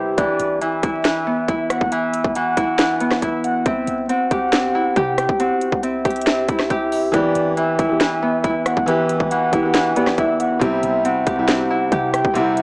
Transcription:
Already playing: grand piano C3 G3 B3 E4 C5 E5, harp C4 E4 G4
0.17 808-style bass E1, harp E3, soft synth lead D5, kick, closed hi-hat
0.40 808-style bass G1, closed hi-hat
0.61 harp E3, soft synth lead E5, closed hi-hat
0.83 808-style bass E1, harp E4, kick, closed hi-hat
1.05 harp E3, snare, closed hi-hat
1.27 harp B3
1.48 808-style bass E1, harp E4, kick, closed hi-hat
1.70 soft synth lead F#5, cross-stick, closed hi-hat
1.81 808-style bass E1, kick
1.92 harp E3, soft synth lead E5, closed hi-hat
2.14 closed hi-hat
2.24 808-style bass E1, kick
2.35 harp E3, soft synth lead F#5, closed hi-hat
2.57 808-style bass E1, harp E4, kick, closed hi-hat
2.79 harp E3, snare, closed hi-hat
3.00 harp B3, closed hi-hat
3.11 cross-stick, snare
3.22 808-style bass E1, harp E4, soft synth lead E5, kick, closed hi-hat
3.44 soft synth lead F#5, closed hi-hat
3.66 808-style bass C2, harp C4, soft synth lead E5, kick, closed hi-hat
3.87 808-style bass C2, closed hi-hat
4.09 harp C4, soft synth lead F#5, closed hi-hat
4.31 808-style bass C2, harp G4, kick, closed hi-hat
4.53 harp C4, snare, closed hi-hat
4.75 harp E4
4.96 808-style bass C3, harp G4, kick, closed hi-hat
5.18 soft synth lead G5, cross-stick, closed hi-hat
5.29 808-style bass C2, kick
5.40 harp C4, soft synth lead F#5, closed hi-hat
5.61 closed hi-hat
5.72 808-style bass C2, kick
5.83 harp C4, soft synth lead E5, closed hi-hat
6.05 808-style bass C2, harp G4, kick, cross-stick, closed hi-hat
6.11 closed hi-hat
6.16 closed hi-hat
6.21 closed hi-hat
6.27 harp C4, snare, closed hi-hat
6.48 808-style bass C2, harp E4, kick, closed hi-hat
6.59 cross-stick, snare
6.70 808-style bass C2, harp G4, kick, closed hi-hat
6.92 open hi-hat
7.12 808-style bass E1, grand piano E3 B3 G4, harp E3, soft synth lead D5, kick, closed hi-hat
7.35 808-style bass G1, closed hi-hat
7.57 harp E3, soft synth lead E5, closed hi-hat
7.79 808-style bass E1, harp E4, kick, closed hi-hat
7.89 grand piano E3 B3 G4
8.01 harp E3, snare, closed hi-hat
8.22 harp B3
8.44 808-style bass E1, harp E4, kick, closed hi-hat
8.66 soft synth lead F#5, cross-stick, closed hi-hat
8.77 808-style bass E1, kick
8.86 grand piano E3 B3 G4, harp E3, soft synth lead E5, closed hi-hat
9.09 closed hi-hat
9.20 808-style bass E1, kick
9.31 harp E3, soft synth lead F#5, closed hi-hat
9.51 808-style bass E1, grand piano E3 B3 G4, harp E4, kick, closed hi-hat
9.63 grand piano E3 B3 G4
9.74 harp E3, snare, closed hi-hat
9.95 grand piano E3 B3 G4 D5, harp B3, closed hi-hat
10.07 cross-stick, snare
10.18 808-style bass E1, harp E4, grand piano E5, soft synth lead E5, kick, closed hi-hat
10.40 grand piano E5, soft synth lead F#5, closed hi-hat
10.59 808-style bass C2, grand piano C3 G3 E4, harp C4, soft synth lead E5, kick, closed hi-hat
10.83 808-style bass C2, closed hi-hat
11.05 harp C4, soft synth lead F#5, closed hi-hat
11.27 808-style bass C2, harp G4, kick, closed hi-hat
11.36 grand piano C3 G3 E4
11.48 harp C4, snare, closed hi-hat
11.70 harp E4
11.92 808-style bass C3, harp G4, kick, closed hi-hat
12.14 soft synth lead G5, cross-stick, closed hi-hat
12.25 808-style bass C2, kick
12.34 grand piano C3 G3 E4, harp C4, soft synth lead F#5, closed hi-hat
12.57 closed hi-hat

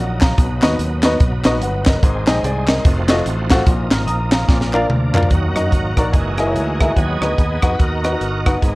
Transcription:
Already playing: fingered electric bass A#1, tonewheel organ F#3 A#3 D#4, grand piano F#5
0.21 grand piano F5 A#5, kick, snare, clap, closed hi-hat
0.37 fingered electric bass B1, grand piano B2, tonewheel organ F#3 B3, kick, closed hi-hat
0.62 fingered electric bass D#2, grand piano B3 D#4 F#4 B4 D#5, snare, clap, closed hi-hat
0.79 fingered electric bass D#2, closed hi-hat
1.03 grand piano B3 D#4 F#4 B4 D#5, snare, clap, closed hi-hat
1.20 fingered electric bass B1, kick, closed hi-hat
1.44 fingered electric bass A#1, grand piano B3 D#4 F#4 B4 D#5, snare, clap, closed hi-hat
1.61 fingered electric bass G1, grand piano B4 F#5, closed hi-hat
1.86 grand piano A#4 D#5, kick, snare, clap, closed hi-hat
2.02 fingered electric bass G#1, grand piano G#2, tonewheel organ G#3 C4 D#4, kick, closed hi-hat
2.27 fingered electric bass A#1, grand piano C4 D#4 G#4 C5 D#5, snare, clap, closed hi-hat
2.43 fingered electric bass C2, grand piano G#4 D5, closed hi-hat
2.67 grand piano A#4 D#5, snare, clap, closed hi-hat
2.84 fingered electric bass F1, tonewheel organ F3 A3 D#4 F#4, kick, closed hi-hat
3.08 grand piano F4 F#4 A4 C5 D#5, snare, clap, closed hi-hat
3.26 fingered electric bass A1, closed hi-hat
3.50 grand piano F4 F#4 A4 C5 F#5, kick, snare, clap, closed hi-hat
3.65 fingered electric bass A#1, grand piano A#2, tonewheel organ A#3, kick, closed hi-hat
3.91 fingered electric bass G#1, grand piano A#5 F6, snare, clap, closed hi-hat
4.07 fingered electric bass A#1, grand piano A#5 D#6, closed hi-hat
4.32 grand piano F5 A#5, snare, clap, closed hi-hat
4.47 fingered electric bass A#1, grand piano A#2, tonewheel organ D4, kick, snare
4.61 snare
4.73 grand piano D4 F4 A#4 D5 F5, clap
4.89 fingered electric bass D2, mid tom
5.14 grand piano D4 F4 A#4 D5 F5, clap, floor tom
5.23 floor tom
5.29 fingered electric bass D#2, grand piano D#3, tonewheel organ F#3 A#3 D#4 F#4, string section A#4 D#5 F#5 A#5, kick, closed hi-hat
5.55 fingered electric bass F#2, grand piano D#4 F#4 A#4 D#5, cross-stick, closed hi-hat
5.72 fingered electric bass G#1, kick, closed hi-hat
5.97 fingered electric bass A#1, grand piano D#4 F#4 A#4 D5, kick, cross-stick, closed hi-hat
6.12 fingered electric bass F#1, tonewheel organ E3 G#3 A#3 D#4, string section F#5 G#5, kick, closed hi-hat
6.38 grand piano E4 G#4 A#4 D#5, cross-stick, closed hi-hat
6.47 grand piano E4 G#4 C#5
6.55 fingered electric bass D2, closed hi-hat
6.80 grand piano E4 G#4 A#4 E5, kick, cross-stick, closed hi-hat
6.96 fingered electric bass D#2, grand piano D#3, tonewheel organ F#3 B3 D#4 G#4, string section B3 F#5, kick, closed hi-hat
7.21 fingered electric bass D2, grand piano D#4 F#4 B4 D#5, cross-stick, closed hi-hat
7.38 fingered electric bass D#2, kick, closed hi-hat
7.62 fingered electric bass F2, grand piano D#4 F#4 B4 F#5, kick, cross-stick, closed hi-hat
7.74 tonewheel organ B4
7.79 fingered electric bass D#2, tonewheel organ D#4 F#4 A#4, kick, closed hi-hat
8.04 grand piano D#4 F#4 B4 D#5, cross-stick, closed hi-hat
8.12 grand piano D#4 F#4 B4 D#5
8.21 fingered electric bass G1, closed hi-hat
8.46 grand piano D#4 F#4 B4 F#5, kick, cross-stick, closed hi-hat
8.62 fingered electric bass G#1, grand piano G#2, tonewheel organ G#3 B3 D#4, string section G#5, kick, closed hi-hat

